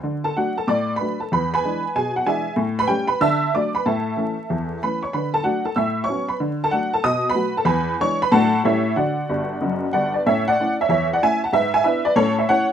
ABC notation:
X:1
M:4/4
L:1/16
Q:"Swing" 1/4=188
K:D
V:1 name="Honky-tonk piano"
z2 [Aa]2 [Ff]2 [Aa]2 [dd']3 [Bb]3 [Aa]2 | [Bb]2 [B^gb]6 [^Gg]2 [Ff]2 [Geg]4 | z2 [Bb]2 [Gg]2 [Bb]2 [eae']4 [dd']2 [Bb]2 | [Aea]12 [Bb]2 [cc']2 |
[Bb]2 [Aa]2 [Ff]2 [Aa]2 [ee']3 [cc']3 [Bb]2 | z2 [Aa]2 [Ff]2 [Aa]2 [^d^d']3 [Bb]3 [Aa]2 | [B^gb]4 [cc']2 [Bb]2 [Afa]4 [Ece]4 | [Fdf]12 [df]2 [Bd]2 |
[K:A] [ce]2 [df]4 [ce]2 [ce]2 [df]2 [eg]2 [fa]2 | [Be]2 [eg]2 [Be]2 [Bd]2 [Ac]2 [ce]2 [cf]2 z2 |]
V:2 name="Honky-tonk piano" clef=bass
D,4 [F,A,D]4 A,,4 [F,A,D]4 | E,,4 [E,^G,D]4 B,,4 [E,G,D]4 | A,,4 [G,A,C]4 D,4 [F,A,D]4 | A,,4 [E,A,C]4 E,,4 [E,A,C]4 |
D,4 [F,A,D]4 A,,4 [F,B,C]4 | D,4 [F,A,D]4 B,,4 [F,A,F]4 | E,,4 [E,^G,D]4 [A,,F,A,D]4 [A,,=G,A,C]4 | D,4 [G,,,G,,]4 [F,,,F,,]4 [G,,,G,,]4 |
[K:A] [A,,C]4 [A,CE]4 E,,4 [A,CE]4 | G,,4 [B,DE]4 [A,,C]4 [A,CE]4 |]